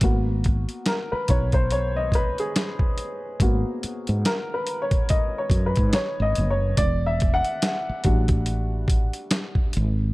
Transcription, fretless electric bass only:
0.03 0.65 G#1 medium
1.13 muted fretless electric bass stroke soft
1.30 2.34 B1 medium
3.41 3.63 G#1 loud
3.84 muted fretless electric bass stroke soft
4.09 4.24 G#2 medium
5.51 5.73 F#2 medium
5.79 5.93 G#2 medium
6.20 6.35 G#1 medium
6.38 6.75 F#1 medium
6.78 7.41 E1 loud
7.89 muted fretless electric bass stroke soft
8.06 9.10 A1 medium
9.77 10.14 G#1 medium

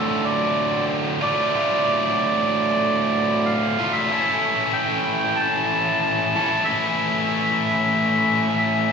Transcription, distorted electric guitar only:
0.00 1.19 D2 loud
0.00 1.19 A2 medium
0.00 1.19 D3 medium
0.00 1.21 A3 loud
0.00 1.20 F4 loud
1.21 1.51 D2 medium
1.21 1.52 A2 medium
1.21 1.52 D3 medium
1.21 1.54 A3 medium
1.21 1.51 F4 medium
1.52 3.76 D2 medium
1.52 3.76 A2 loud
1.52 3.77 D3 loud
1.52 3.79 A3 medium
1.52 3.77 F4 loud
3.79 4.10 D2 medium
3.79 4.10 A2 medium
3.79 4.09 D3 medium
3.79 4.12 A3 medium
3.79 4.09 F4 medium
4.11 6.34 A2 medium
4.11 6.34 E3 medium
4.11 6.37 A3 medium
4.11 6.35 C#4 loud
4.11 6.35 E4 loud
4.11 6.36 A4 loud
6.36 6.67 A2 medium
6.36 6.67 E3 medium
6.36 6.69 A3 medium
6.36 6.66 C#4 medium
6.36 6.66 E4 medium
6.36 6.71 A4 medium
6.69 8.91 A2 medium
6.69 8.91 E3 medium
6.69 8.92 A3 medium
6.69 8.91 C#4 loud
6.69 8.91 E4 loud
6.69 8.91 A4 loud

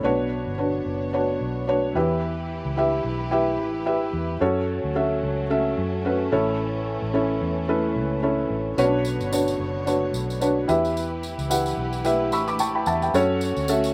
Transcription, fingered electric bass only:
0.04 0.44 B1 medium
0.46 0.83 G1 medium
0.86 1.37 F#1 medium
1.41 1.92 B1 medium
1.95 2.61 E2 medium
2.65 3.02 C#2 medium
3.04 3.59 B1 medium
3.59 4.10 A1 medium
4.13 4.39 E2 medium
4.41 4.81 F#2 medium
4.84 5.20 D2 medium
5.23 5.74 C#2 medium
5.78 6.28 F#2 medium
6.32 6.98 A1 medium
7.02 7.39 A1 medium
7.41 7.98 E2 medium
7.96 8.47 C#2 medium
8.50 8.76 A1 medium
8.78 9.17 B1 loud
9.20 9.57 G1 medium
9.59 10.10 F#1 medium
10.13 10.65 B1 medium
10.69 11.35 E2 loud
11.38 11.75 C#2 medium
11.77 12.32 B1 medium
12.32 12.83 A1 medium
12.87 13.12 E2 medium
13.14 13.54 F#2 loud
13.57 13.93 D2 medium

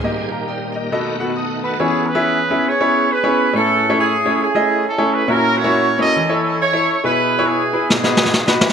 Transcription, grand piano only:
0.04 0.71 A#2 medium
0.04 0.23 A#3 medium
0.04 0.23 D#4 medium
0.04 0.23 G4 medium
0.04 0.23 D#5 medium
0.32 0.48 F5 soft
0.32 0.48 A#5 medium
0.48 0.75 D5 soft
0.48 0.74 G5 medium
0.76 1.18 A#4 soft
0.76 0.91 D#5 medium
0.92 1.59 B2 medium
0.92 1.11 B3 medium
0.92 1.11 F#4 medium
0.92 1.11 A4 medium
0.92 1.11 D#5 medium
1.20 1.31 B3 medium
1.20 1.31 F#4 medium
1.20 1.31 A4 medium
1.20 1.31 F#5 medium
1.37 1.63 A5 soft
1.37 1.62 D#6 medium
1.64 2.05 F#5 soft
1.64 2.05 B5 soft
1.80 2.47 E3 medium
1.80 2.07 B3 medium
1.80 2.07 C#4 medium
1.80 2.07 E4 medium
1.80 2.07 G#4 medium
1.80 2.07 C#5 medium
2.15 2.37 B3 medium
2.15 2.37 C#4 medium
2.15 2.37 E4 medium
2.15 2.37 G#4 medium
2.15 2.37 E5 medium
2.50 2.67 B3 medium
2.50 2.67 C#4 medium
2.50 2.67 E4 medium
2.50 2.67 G#4 medium
2.50 2.67 E5 medium
2.80 3.08 B3 medium
2.80 3.08 C#4 medium
2.80 3.08 E4 medium
2.80 3.08 G#4 medium
2.80 3.08 C#5 medium
3.24 3.46 B3 medium
3.24 3.46 C#4 medium
3.24 3.46 E4 medium
3.24 3.46 G#4 medium
3.24 3.46 C#5 medium
3.53 4.21 A2 medium
3.53 3.81 A3 medium
3.53 3.81 C#4 medium
3.53 3.81 E4 medium
3.53 3.81 G#4 medium
3.53 3.81 C#5 medium
3.89 4.12 A3 medium
3.89 4.12 C#4 medium
3.89 4.12 E4 medium
3.89 4.12 G#4 medium
3.89 4.12 C#5 medium
4.25 4.42 A3 medium
4.25 4.42 C#4 medium
4.25 4.42 E4 medium
4.25 4.42 G#4 medium
4.25 4.42 C#5 medium
4.55 4.82 A3 medium
4.55 4.82 C#4 medium
4.55 4.83 E4 medium
4.55 4.82 G#4 medium
4.55 4.83 D#5 medium
4.98 5.21 A3 medium
4.98 5.21 C#4 medium
4.98 5.20 E4 medium
4.98 5.21 G#4 medium
4.98 5.21 C#5 medium
5.28 5.95 A#2 medium
5.28 5.56 A#3 medium
5.28 5.56 C#4 medium
5.28 5.56 E4 medium
5.28 5.56 F#4 medium
5.28 5.56 C#5 medium
5.64 5.86 A#3 medium
5.64 5.86 C#4 medium
5.64 5.86 E4 medium
5.64 5.86 F#4 medium
5.64 5.86 C#5 medium
5.99 6.16 A#3 medium
5.99 6.16 C#4 medium
5.99 6.16 E4 medium
5.99 6.16 F#4 medium
5.99 6.16 C#5 medium
6.16 6.83 E3 medium
6.29 6.57 E4 medium
6.29 6.57 A4 medium
6.29 6.57 C#5 medium
6.73 6.95 E4 medium
6.73 6.95 A4 medium
6.73 6.95 C#5 medium
7.04 7.71 B2 medium
7.04 7.31 E4 medium
7.04 7.31 G#4 medium
7.04 7.31 B4 medium
7.39 7.61 E4 medium
7.39 7.61 G#4 medium
7.39 7.61 C#5 medium
7.73 7.90 E4 medium
7.73 7.90 G#4 medium
7.73 7.90 B4 medium
7.89 8.57 B2 medium
8.03 8.31 D#4 medium
8.03 8.32 F#4 medium
8.03 8.32 B4 medium
8.47 8.70 D#4 medium
8.47 8.70 F#4 medium
8.47 8.70 B4 medium

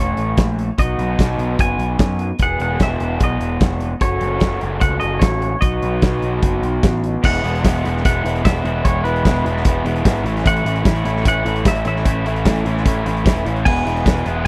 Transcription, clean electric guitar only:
0.00 0.36 C#5 medium
0.79 1.60 D#5 medium
1.61 2.42 G#5 loud
2.43 2.60 F#5 loud
2.62 2.82 F#5 medium
2.83 3.19 E5 medium
3.24 3.60 D#5 medium
4.02 4.58 C#5 medium
4.81 4.99 F#5 loud
5.00 5.22 D#5 medium
5.19 5.63 C#5 medium
5.61 6.79 D#5 medium
7.25 8.01 F#5 loud
8.06 8.42 F#5 loud
8.45 8.86 E5 medium
8.85 9.04 C#5 medium
9.04 9.61 B4 medium
10.47 11.27 F#5 loud
11.28 11.67 F#5 loud
11.68 11.86 E5 loud
11.88 12.63 E5 medium
13.65 14.42 G#5 loud

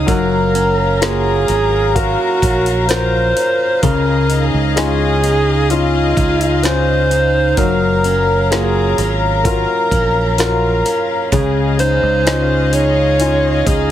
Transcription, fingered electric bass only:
0.08 1.44 F#1 loud
1.49 2.15 G#1 medium
2.42 3.32 A#1 medium
3.83 4.49 C#2 loud
4.54 6.14 C#2 medium
6.17 7.54 C#2 medium
7.57 8.94 F#1 loud
8.98 9.64 G#1 medium
9.92 10.81 A#1 medium
11.32 11.99 C#2 loud
12.03 13.63 C#2 medium
13.67 13.91 C#2 medium

